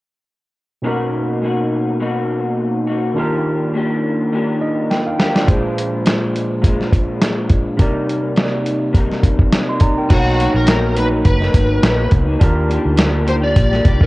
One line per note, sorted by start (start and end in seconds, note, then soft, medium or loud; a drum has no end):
0.82 3.11 B2 medium
0.82 1.41 B2 medium
0.82 1.43 A#3 medium
0.82 3.12 C#4 medium
0.82 3.12 D#4 medium
0.82 1.44 D#4 medium
0.82 3.13 F#4 medium
0.87 1.44 F#4 medium
0.87 3.14 A#4 medium
1.42 1.99 B2 soft
1.42 2.01 A#3 medium
1.42 2.02 D#4 medium
1.42 2.02 F#4 medium
2.00 2.87 B2 medium
2.00 2.91 A#3 medium
2.00 2.89 D#4 medium
2.00 2.86 F#4 medium
2.87 3.17 A#3 soft
2.87 3.18 D#4 soft
2.87 3.16 F#4 soft
3.14 5.43 D#3 medium
3.14 3.73 D#3 medium
3.14 3.75 A#3 medium
3.14 5.43 D4 medium
3.14 4.58 F4 medium
3.14 4.59 G4 medium
3.19 3.76 D4 medium
3.19 3.76 G4 medium
3.19 4.60 A#4 medium
3.74 4.31 D#3 medium
3.74 4.34 A#3 medium
3.74 4.34 D4 medium
3.74 4.34 G4 medium
4.33 5.19 D#3 medium
4.33 5.23 A#3 medium
4.33 5.21 D4 medium
4.33 5.18 G4 medium
4.61 4.88 D#5 medium
4.90 5.17 G5 medium
4.90 snare soft
5.07 5.19 F5 medium
5.18 5.49 D4 soft
5.18 5.48 G4 soft
5.18 5.34 A#4 soft
5.18 5.34 G5 medium
5.18 snare medium
5.23 5.50 A#3 soft
5.35 5.46 F4 soft
5.35 5.63 D5 medium
5.35 snare medium
5.45 7.74 A#2 medium
5.45 6.60 A#2 medium
5.45 7.74 D4 medium
5.45 7.75 F4 medium
5.45 kick medium
5.45 closed hi-hat medium
5.49 6.63 F3 medium
5.49 6.64 G#3 medium
5.49 6.66 D4 medium
5.49 7.76 G#4 medium
5.49 7.76 C5 medium
5.78 closed hi-hat medium
6.06 snare loud
6.06 closed hi-hat medium
6.36 closed hi-hat medium
6.62 7.76 A#2 medium
6.62 7.79 F3 medium
6.62 kick medium
6.62 closed hi-hat medium
6.66 7.80 G#3 medium
6.66 7.81 D4 medium
6.81 snare soft
6.93 kick medium
6.93 closed hi-hat medium
7.22 snare medium
7.22 closed hi-hat medium
7.50 kick medium
7.50 closed hi-hat medium
7.77 10.05 C3 medium
7.77 8.92 C3 medium
7.77 8.94 G3 medium
7.77 10.05 D#4 medium
7.77 10.06 G4 medium
7.77 9.21 A#4 medium
7.77 kick medium
7.77 closed hi-hat medium
7.81 8.96 A#3 medium
7.81 8.99 D#4 medium
7.81 9.22 D5 medium
8.10 closed hi-hat medium
8.36 snare loud
8.36 closed hi-hat medium
8.66 closed hi-hat medium
8.93 10.09 C3 medium
8.93 10.10 G3 medium
8.93 kick medium
8.93 closed hi-hat medium
8.97 10.11 A#3 medium
8.97 10.12 D#4 medium
9.12 snare soft
9.23 kick medium
9.23 closed hi-hat medium
9.39 kick medium
9.53 snare medium
9.53 closed hi-hat medium
9.69 9.81 D#5 medium
9.69 9.81 C6 medium
9.80 9.97 D5 medium
9.80 9.96 A#5 medium
9.80 kick medium
9.80 closed hi-hat medium
9.98 10.25 A#4 soft
9.98 10.25 G5 medium
10.08 10.46 B1 medium
10.08 10.37 B2 medium
10.08 10.39 F#3 medium
10.08 10.40 A#3 medium
10.08 12.36 D#4 medium
10.08 10.40 D#4 medium
10.08 12.37 F#4 medium
10.08 10.55 F#4 medium
10.08 12.37 A#5 soft
10.08 kick loud
10.08 closed hi-hat medium
10.08 crash medium
10.13 12.39 C#5 medium
10.38 10.66 B2 medium
10.38 10.67 F#3 medium
10.38 10.68 A#3 medium
10.38 10.69 D#4 medium
10.38 closed hi-hat medium
10.54 11.21 A#1 medium
10.54 10.98 A#4 medium
10.66 10.95 B2 medium
10.66 10.96 F#3 medium
10.66 10.97 A#3 medium
10.66 10.98 D#4 medium
10.66 snare loud
10.66 closed hi-hat medium
10.96 11.12 B2 medium
10.96 11.13 F#3 medium
10.96 11.12 A#3 medium
10.96 11.10 D#4 medium
10.96 11.06 B4 medium
10.96 closed hi-hat medium
11.11 11.43 F#3 soft
11.11 11.41 A#3 soft
11.11 11.39 D#4 soft
11.25 11.48 F#1 medium
11.25 12.08 B4 medium
11.25 kick medium
11.25 closed hi-hat medium
11.40 11.53 F#3 soft
11.40 11.55 A#3 soft
11.40 11.54 D#4 soft
11.40 snare soft
11.53 11.77 G#1 medium
11.53 11.80 B2 medium
11.53 11.81 F#3 medium
11.53 11.82 A#3 medium
11.53 kick medium
11.53 closed hi-hat medium
11.57 11.83 D#4 medium
11.81 12.06 A#1 medium
11.81 12.27 B2 medium
11.81 12.28 F#3 medium
11.81 12.27 A#3 medium
11.81 12.25 D#4 medium
11.81 snare loud
11.81 closed hi-hat medium
12.11 12.35 C#2 medium
12.11 kick medium
12.11 closed hi-hat medium
12.26 12.38 A#3 soft
12.26 12.40 D#4 medium
12.30 12.38 F#3 soft
12.39 12.77 D#2 medium
12.39 12.66 D#3 medium
12.39 12.68 A#3 medium
12.39 14.06 D4 medium
12.39 12.69 D4 medium
12.39 14.06 F4 medium
12.39 12.70 G4 medium
12.39 14.06 G4 medium
12.39 kick loud
12.39 closed hi-hat medium
12.43 14.06 A#4 medium
12.67 12.95 D#3 medium
12.67 12.96 A#3 medium
12.67 12.97 D4 medium
12.67 12.98 G4 medium
12.67 closed hi-hat medium
12.85 13.53 D2 medium
12.97 13.23 D#3 medium
12.97 13.25 A#3 medium
12.97 13.26 D4 medium
12.97 13.27 G4 medium
12.97 snare loud
12.97 closed hi-hat medium
13.24 13.42 D#3 medium
13.24 13.43 A#3 medium
13.24 13.41 D4 medium
13.24 13.39 G4 medium
13.24 closed hi-hat medium
13.29 13.34 C5 medium
13.41 13.73 A#3 soft
13.41 13.72 D4 soft
13.41 13.70 G4 soft
13.41 14.03 D5 medium
13.56 13.79 A#1 medium
13.56 kick medium
13.56 closed hi-hat medium
13.71 13.84 A#3 soft
13.71 13.85 D4 soft
13.71 13.85 G4 soft
13.71 snare soft
13.84 14.06 C2 medium
13.84 14.06 D#3 medium
13.84 14.06 A#3 medium
13.84 14.06 D4 medium
13.84 14.06 G4 medium
13.84 kick medium
13.84 closed hi-hat medium
14.01 14.06 A#4 medium
14.01 kick medium